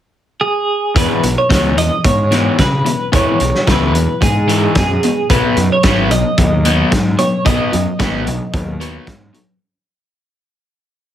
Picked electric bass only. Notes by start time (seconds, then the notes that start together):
0.95 E2
1.23 B1
1.50 C#2
1.77 E2
2.05 G#2
2.59 C#3
3.13 E2
3.41 B1
3.68 C#2
3.94 E2
4.22 G#2
4.76 F#2
5.30 B1
5.57 F#2
5.84 G#1
6.11 B1
6.38 D#2
6.92 G#2
7.46 B1
7.74 F#2
8.00 G#1
8.27 B1
8.53 D#2
9.08 G#2